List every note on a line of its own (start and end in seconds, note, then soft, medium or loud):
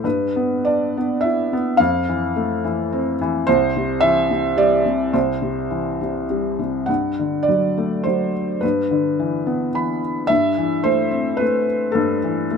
0.04 1.74 G2 medium
0.04 0.66 B4 medium
0.36 0.96 B3 soft
0.65 1.77 D4 soft
0.65 1.24 D5 medium
0.97 1.51 B3 soft
1.21 1.78 E4 soft
1.21 1.74 E5 medium
1.53 1.79 B3 medium
1.77 3.44 F2 medium
1.77 3.15 F5 medium
2.09 2.63 E3 soft
2.36 3.45 A3 soft
2.64 3.20 E3 soft
2.93 3.46 C4 medium
3.21 3.47 E3 medium
3.47 5.10 C2 medium
3.47 4.03 C5 loud
3.76 4.29 C3 soft
4.00 5.10 E3 medium
4.00 4.58 E5 loud
4.31 4.84 C3 soft
4.57 5.11 G3 soft
4.57 5.15 D5 medium
4.86 5.13 C3 medium
5.13 6.85 C2 medium
5.13 6.25 C5 medium
5.42 6.00 C3 soft
5.71 6.86 E3 soft
6.01 6.58 C3 soft
6.30 6.88 G3 soft
6.59 6.88 C3 soft
6.86 8.59 G2 soft
6.86 7.48 F#5 medium
7.19 8.32 D3 soft
7.43 8.00 D5 medium
7.49 8.05 F#3 soft
7.78 8.61 A3 soft
8.04 8.62 F#3 soft
8.04 8.64 C5 medium
8.61 10.26 G2 soft
8.61 9.69 B4 medium
8.91 9.99 D3 soft
9.19 9.73 E3 soft
9.46 10.28 B3 soft
9.75 10.29 E3 soft
9.75 10.27 B5 medium
10.27 11.91 G2 medium
10.27 10.86 E5 medium
10.58 11.64 E3 soft
10.84 11.39 A3 soft
10.84 11.41 C5 medium
11.11 12.19 C4 medium
11.37 12.47 A3 soft
11.37 11.95 B4 medium
11.92 12.57 G2 medium
11.92 12.57 A4 medium
12.24 12.57 E3 soft
12.51 12.57 A3 soft